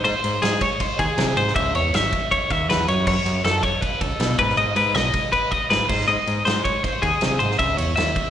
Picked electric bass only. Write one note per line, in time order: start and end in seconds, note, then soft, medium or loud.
0.05 0.12 G#2 loud
0.24 0.39 G#2 loud
0.43 0.57 G#2 medium
0.99 1.07 D#2 loud
1.18 1.33 C3 loud
1.37 1.52 G#2 loud
1.56 1.75 C#2 loud
1.75 1.90 E2 loud
1.93 2.08 G#1 loud
2.51 2.68 D#2 medium
2.69 2.86 E2 medium
2.89 3.05 F#2 medium
3.07 3.14 F#2 loud
3.25 3.40 F#2 medium
3.44 3.59 F#2 medium
4.01 4.08 C#2 loud
4.20 4.35 B2 medium
4.39 4.54 G#2 medium
4.57 4.72 G#2 medium
4.76 4.91 G#2 loud
4.95 5.10 B1 loud
5.71 5.86 G#2 medium
5.90 6.05 G#2 loud
6.08 6.16 G#2 loud
6.27 6.42 G#2 loud
6.46 6.61 G#2 medium
7.02 7.10 D#2 loud
7.22 7.37 C3 loud
7.40 7.55 G#2 medium
7.59 7.78 C#2 loud
7.78 7.93 E2 loud
7.97 8.12 D#2 medium